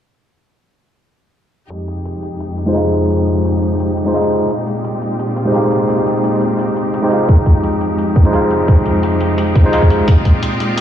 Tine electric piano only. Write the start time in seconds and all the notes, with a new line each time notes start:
2.66 G#3 D#4 F4 C5
2.73 G#3 D#4 F4
2.77 F5
4.06 G#3 D#4 F4 C5
4.14 G#3 D#4 F4 F5
5.45 G#3 D#4 G4 C5
5.52 G#3 D#4 G4
5.56 F5
7.02 G#3 D#4 G4 C5
7.09 G#3 D#4 F4
7.13 F5
8.24 G#3 D#4 F4 C5
8.31 G#3 D#4 F4
8.36 F5
9.64 G#3 D#4 F4 C5
9.72 G#3 D#4 F4 F5